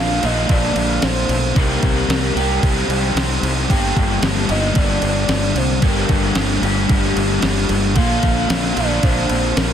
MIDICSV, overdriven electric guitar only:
0, 0, Header, 1, 2, 480
1, 0, Start_track
1, 0, Key_signature, -2, "minor"
1, 0, Tempo, 533333
1, 1406, Time_signature, 4, 2, 24, 8
1, 8758, End_track
2, 0, Start_track
2, 0, Title_t, "Overdriven electric guitar"
2, 0, Program_c, 0, 29
2, 0, Note_on_c, 0, 46, 100
2, 0, Note_on_c, 0, 50, 96
2, 0, Note_on_c, 0, 58, 100
2, 0, Note_on_c, 0, 62, 96
2, 0, Note_on_c, 0, 65, 109
2, 187, Note_off_c, 0, 65, 0
2, 192, Note_off_c, 0, 46, 0
2, 195, Note_off_c, 0, 50, 0
2, 196, Note_off_c, 0, 62, 0
2, 198, Note_on_c, 0, 65, 95
2, 207, Note_on_c, 0, 62, 94
2, 208, Note_off_c, 0, 58, 0
2, 211, Note_on_c, 0, 58, 79
2, 215, Note_on_c, 0, 50, 85
2, 222, Note_on_c, 0, 46, 80
2, 1387, Note_off_c, 0, 65, 0
2, 1390, Note_off_c, 0, 46, 0
2, 1391, Note_off_c, 0, 62, 0
2, 1394, Note_off_c, 0, 50, 0
2, 1394, Note_on_c, 0, 48, 93
2, 1397, Note_on_c, 0, 51, 90
2, 1403, Note_off_c, 0, 58, 0
2, 1406, Note_on_c, 0, 55, 93
2, 1409, Note_on_c, 0, 60, 103
2, 1412, Note_on_c, 0, 67, 97
2, 2105, Note_off_c, 0, 48, 0
2, 2106, Note_off_c, 0, 51, 0
2, 2112, Note_off_c, 0, 60, 0
2, 2116, Note_off_c, 0, 67, 0
2, 2120, Note_on_c, 0, 67, 107
2, 2126, Note_off_c, 0, 55, 0
2, 2127, Note_on_c, 0, 60, 101
2, 2129, Note_on_c, 0, 55, 78
2, 2137, Note_on_c, 0, 51, 84
2, 2142, Note_on_c, 0, 48, 76
2, 3310, Note_off_c, 0, 60, 0
2, 3315, Note_off_c, 0, 48, 0
2, 3315, Note_off_c, 0, 51, 0
2, 3316, Note_on_c, 0, 43, 79
2, 3318, Note_on_c, 0, 50, 97
2, 3328, Note_off_c, 0, 55, 0
2, 3328, Note_on_c, 0, 55, 103
2, 3331, Note_off_c, 0, 67, 0
2, 3331, Note_on_c, 0, 58, 95
2, 3334, Note_on_c, 0, 62, 94
2, 3335, Note_on_c, 0, 67, 96
2, 4026, Note_off_c, 0, 50, 0
2, 4036, Note_off_c, 0, 67, 0
2, 4040, Note_on_c, 0, 67, 84
2, 4044, Note_off_c, 0, 62, 0
2, 4047, Note_off_c, 0, 58, 0
2, 4047, Note_on_c, 0, 62, 93
2, 4050, Note_on_c, 0, 58, 90
2, 4052, Note_off_c, 0, 55, 0
2, 4055, Note_on_c, 0, 55, 84
2, 4057, Note_off_c, 0, 43, 0
2, 4060, Note_on_c, 0, 50, 76
2, 4061, Note_on_c, 0, 43, 75
2, 5226, Note_off_c, 0, 43, 0
2, 5227, Note_off_c, 0, 67, 0
2, 5233, Note_off_c, 0, 50, 0
2, 5235, Note_off_c, 0, 55, 0
2, 5237, Note_on_c, 0, 43, 89
2, 5243, Note_on_c, 0, 50, 105
2, 5245, Note_on_c, 0, 55, 98
2, 5247, Note_off_c, 0, 58, 0
2, 5250, Note_on_c, 0, 58, 99
2, 5253, Note_off_c, 0, 62, 0
2, 5257, Note_on_c, 0, 62, 104
2, 5259, Note_on_c, 0, 67, 97
2, 5942, Note_off_c, 0, 67, 0
2, 5946, Note_off_c, 0, 43, 0
2, 5949, Note_off_c, 0, 50, 0
2, 5950, Note_off_c, 0, 55, 0
2, 5953, Note_on_c, 0, 67, 98
2, 5956, Note_off_c, 0, 62, 0
2, 5960, Note_off_c, 0, 58, 0
2, 5960, Note_on_c, 0, 62, 91
2, 5964, Note_on_c, 0, 58, 83
2, 5967, Note_on_c, 0, 55, 92
2, 5971, Note_on_c, 0, 50, 73
2, 5976, Note_on_c, 0, 43, 78
2, 7145, Note_off_c, 0, 67, 0
2, 7148, Note_off_c, 0, 62, 0
2, 7151, Note_off_c, 0, 50, 0
2, 7152, Note_off_c, 0, 55, 0
2, 7155, Note_on_c, 0, 46, 92
2, 7156, Note_off_c, 0, 43, 0
2, 7162, Note_on_c, 0, 50, 89
2, 7167, Note_off_c, 0, 58, 0
2, 7171, Note_on_c, 0, 58, 99
2, 7175, Note_on_c, 0, 62, 91
2, 7178, Note_on_c, 0, 65, 109
2, 7867, Note_off_c, 0, 46, 0
2, 7870, Note_off_c, 0, 50, 0
2, 7871, Note_off_c, 0, 65, 0
2, 7874, Note_off_c, 0, 58, 0
2, 7876, Note_off_c, 0, 62, 0
2, 7882, Note_on_c, 0, 65, 97
2, 7886, Note_on_c, 0, 62, 100
2, 7893, Note_on_c, 0, 58, 91
2, 7900, Note_on_c, 0, 50, 79
2, 7905, Note_on_c, 0, 46, 76
2, 8758, Note_off_c, 0, 46, 0
2, 8758, Note_off_c, 0, 50, 0
2, 8758, Note_off_c, 0, 58, 0
2, 8758, Note_off_c, 0, 62, 0
2, 8758, Note_off_c, 0, 65, 0
2, 8758, End_track
0, 0, End_of_file